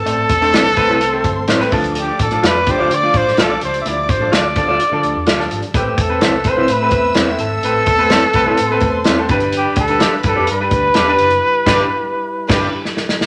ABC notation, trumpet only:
X:1
M:4/4
L:1/16
Q:1/4=127
K:Am
V:1 name="Trumpet"
A12- A2 z2 | G2 A2 B2 c2 d2 c2 A2 c3/2 e/2 | d2 c2 d8 z4 | G2 A4 c2 B4 z2 A2- |
A12- A2 z2 | G2 A4 A2 B8- | B12 z4 |]